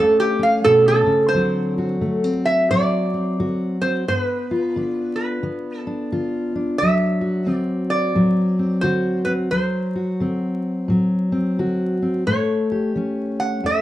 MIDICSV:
0, 0, Header, 1, 3, 480
1, 0, Start_track
1, 0, Tempo, 682594
1, 933, Time_signature, 4, 2, 24, 8
1, 9715, End_track
2, 0, Start_track
2, 0, Title_t, "Resonator guitar played with a steel bar"
2, 0, Program_c, 0, 25
2, 0, Note_on_c, 0, 69, 96
2, 136, Note_off_c, 0, 69, 0
2, 139, Note_on_c, 0, 67, 92
2, 292, Note_off_c, 0, 67, 0
2, 302, Note_on_c, 0, 77, 85
2, 453, Note_on_c, 0, 69, 110
2, 454, Note_off_c, 0, 77, 0
2, 608, Note_off_c, 0, 69, 0
2, 618, Note_on_c, 0, 69, 108
2, 867, Note_off_c, 0, 69, 0
2, 903, Note_on_c, 0, 72, 100
2, 1368, Note_off_c, 0, 72, 0
2, 1726, Note_on_c, 0, 76, 92
2, 1886, Note_off_c, 0, 76, 0
2, 1903, Note_on_c, 0, 74, 94
2, 2683, Note_on_c, 0, 72, 77
2, 2698, Note_off_c, 0, 74, 0
2, 2843, Note_off_c, 0, 72, 0
2, 2872, Note_on_c, 0, 72, 79
2, 2949, Note_off_c, 0, 72, 0
2, 2949, Note_on_c, 0, 71, 79
2, 3618, Note_off_c, 0, 71, 0
2, 3626, Note_on_c, 0, 71, 60
2, 4069, Note_off_c, 0, 71, 0
2, 4069, Note_on_c, 0, 69, 60
2, 4258, Note_off_c, 0, 69, 0
2, 4770, Note_on_c, 0, 76, 93
2, 5297, Note_off_c, 0, 76, 0
2, 5297, Note_on_c, 0, 74, 93
2, 5521, Note_off_c, 0, 74, 0
2, 5556, Note_on_c, 0, 74, 84
2, 6197, Note_on_c, 0, 72, 90
2, 6232, Note_off_c, 0, 74, 0
2, 6500, Note_off_c, 0, 72, 0
2, 6502, Note_on_c, 0, 71, 77
2, 6552, Note_off_c, 0, 71, 0
2, 6687, Note_on_c, 0, 72, 79
2, 7621, Note_off_c, 0, 72, 0
2, 8627, Note_on_c, 0, 73, 90
2, 9073, Note_off_c, 0, 73, 0
2, 9421, Note_on_c, 0, 78, 76
2, 9577, Note_off_c, 0, 78, 0
2, 9606, Note_on_c, 0, 76, 84
2, 9715, Note_off_c, 0, 76, 0
2, 9715, End_track
3, 0, Start_track
3, 0, Title_t, "Steel-string acoustic guitar"
3, 0, Program_c, 1, 25
3, 0, Note_on_c, 1, 40, 71
3, 0, Note_on_c, 1, 57, 72
3, 0, Note_on_c, 1, 61, 70
3, 0, Note_on_c, 1, 67, 75
3, 267, Note_off_c, 1, 61, 0
3, 275, Note_on_c, 1, 61, 67
3, 414, Note_off_c, 1, 40, 0
3, 461, Note_on_c, 1, 47, 83
3, 746, Note_off_c, 1, 47, 0
3, 748, Note_on_c, 1, 49, 75
3, 908, Note_off_c, 1, 67, 0
3, 909, Note_off_c, 1, 57, 0
3, 911, Note_off_c, 1, 61, 0
3, 930, Note_off_c, 1, 49, 0
3, 937, Note_on_c, 1, 38, 66
3, 941, Note_on_c, 1, 50, 54
3, 947, Note_on_c, 1, 54, 56
3, 953, Note_on_c, 1, 60, 54
3, 956, Note_on_c, 1, 66, 58
3, 1243, Note_off_c, 1, 66, 0
3, 1253, Note_on_c, 1, 66, 57
3, 1377, Note_off_c, 1, 38, 0
3, 1407, Note_off_c, 1, 50, 0
3, 1412, Note_off_c, 1, 60, 0
3, 1414, Note_on_c, 1, 50, 60
3, 1414, Note_on_c, 1, 57, 54
3, 1574, Note_off_c, 1, 57, 0
3, 1574, Note_on_c, 1, 60, 43
3, 1856, Note_off_c, 1, 50, 0
3, 1897, Note_off_c, 1, 54, 0
3, 1900, Note_on_c, 1, 45, 59
3, 1907, Note_on_c, 1, 54, 58
3, 2196, Note_off_c, 1, 60, 0
3, 2207, Note_on_c, 1, 60, 52
3, 2338, Note_off_c, 1, 45, 0
3, 2379, Note_off_c, 1, 66, 0
3, 2389, Note_on_c, 1, 50, 64
3, 2389, Note_on_c, 1, 66, 71
3, 2673, Note_off_c, 1, 60, 0
3, 2682, Note_on_c, 1, 60, 54
3, 2822, Note_off_c, 1, 50, 0
3, 2833, Note_off_c, 1, 60, 0
3, 2836, Note_off_c, 1, 66, 0
3, 2857, Note_off_c, 1, 54, 0
3, 2867, Note_on_c, 1, 43, 70
3, 2873, Note_on_c, 1, 59, 59
3, 3172, Note_on_c, 1, 65, 56
3, 3301, Note_off_c, 1, 43, 0
3, 3347, Note_on_c, 1, 50, 62
3, 3355, Note_on_c, 1, 62, 64
3, 3781, Note_off_c, 1, 50, 0
3, 3809, Note_off_c, 1, 59, 0
3, 3816, Note_on_c, 1, 50, 62
3, 3818, Note_on_c, 1, 59, 56
3, 4124, Note_off_c, 1, 62, 0
3, 4126, Note_on_c, 1, 62, 57
3, 4256, Note_off_c, 1, 50, 0
3, 4296, Note_off_c, 1, 65, 0
3, 4305, Note_on_c, 1, 65, 71
3, 4306, Note_on_c, 1, 50, 69
3, 4607, Note_off_c, 1, 62, 0
3, 4609, Note_on_c, 1, 62, 56
3, 4741, Note_off_c, 1, 50, 0
3, 4751, Note_off_c, 1, 59, 0
3, 4754, Note_off_c, 1, 65, 0
3, 4791, Note_on_c, 1, 38, 68
3, 4801, Note_on_c, 1, 54, 53
3, 5071, Note_on_c, 1, 66, 59
3, 5224, Note_off_c, 1, 38, 0
3, 5248, Note_off_c, 1, 62, 0
3, 5248, Note_on_c, 1, 50, 61
3, 5251, Note_on_c, 1, 60, 58
3, 5692, Note_off_c, 1, 50, 0
3, 5732, Note_off_c, 1, 54, 0
3, 5732, Note_on_c, 1, 45, 59
3, 5735, Note_on_c, 1, 54, 58
3, 6030, Note_off_c, 1, 60, 0
3, 6041, Note_on_c, 1, 60, 52
3, 6174, Note_off_c, 1, 45, 0
3, 6201, Note_off_c, 1, 66, 0
3, 6210, Note_on_c, 1, 66, 75
3, 6213, Note_on_c, 1, 50, 70
3, 6503, Note_off_c, 1, 60, 0
3, 6511, Note_on_c, 1, 60, 60
3, 6655, Note_off_c, 1, 50, 0
3, 6668, Note_off_c, 1, 60, 0
3, 6668, Note_off_c, 1, 66, 0
3, 6684, Note_off_c, 1, 54, 0
3, 6692, Note_on_c, 1, 38, 71
3, 6694, Note_on_c, 1, 54, 60
3, 7000, Note_on_c, 1, 66, 55
3, 7136, Note_off_c, 1, 38, 0
3, 7175, Note_on_c, 1, 50, 66
3, 7182, Note_on_c, 1, 60, 58
3, 7617, Note_off_c, 1, 50, 0
3, 7651, Note_on_c, 1, 45, 67
3, 7652, Note_off_c, 1, 54, 0
3, 7662, Note_on_c, 1, 54, 62
3, 7953, Note_off_c, 1, 60, 0
3, 7961, Note_on_c, 1, 60, 52
3, 8096, Note_off_c, 1, 45, 0
3, 8137, Note_off_c, 1, 66, 0
3, 8149, Note_on_c, 1, 50, 66
3, 8152, Note_on_c, 1, 66, 70
3, 8437, Note_off_c, 1, 60, 0
3, 8455, Note_on_c, 1, 60, 52
3, 8585, Note_off_c, 1, 50, 0
3, 8601, Note_off_c, 1, 66, 0
3, 8602, Note_off_c, 1, 60, 0
3, 8618, Note_off_c, 1, 54, 0
3, 8626, Note_on_c, 1, 45, 66
3, 8633, Note_on_c, 1, 57, 57
3, 8941, Note_on_c, 1, 67, 57
3, 9064, Note_off_c, 1, 45, 0
3, 9109, Note_on_c, 1, 52, 67
3, 9119, Note_on_c, 1, 61, 56
3, 9547, Note_off_c, 1, 52, 0
3, 9583, Note_off_c, 1, 57, 0
3, 9588, Note_on_c, 1, 40, 60
3, 9591, Note_on_c, 1, 57, 56
3, 9715, Note_off_c, 1, 40, 0
3, 9715, Note_off_c, 1, 57, 0
3, 9715, Note_off_c, 1, 61, 0
3, 9715, Note_off_c, 1, 67, 0
3, 9715, End_track
0, 0, End_of_file